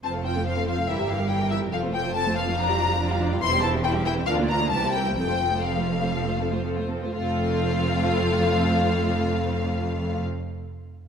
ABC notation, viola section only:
X:1
M:4/4
L:1/16
Q:1/4=129
K:F
V:1 name="Viola section"
[CF] [A,C] [CF] [A,C] [CF] [A,C] [CF] [A,C] [E,E] [G,G] [E,E] [G,G] [E,E] [G,G] [E,E] [G,G] | [F,C] A, [F,C] A, [F,C] A, [F,C] A, [F,D] [G,F] [F,D] [G,F] [F,D] [G,F] [F,D] [G,F] | [E,E] [G,C] [E,E] [G,C] [E,E] [G,C] [E,E] [G,C] [DF] [B,D] [DF] [B,D] [E,C] [G,B,] [E,C] [G,B,] | [F,C] A, [F,C] A, [F,C] A, [F,C] A, [F,C] A, [F,C] A, [F,C] A, [F,C] A, |
[A,C]16- | [A,C]16 |]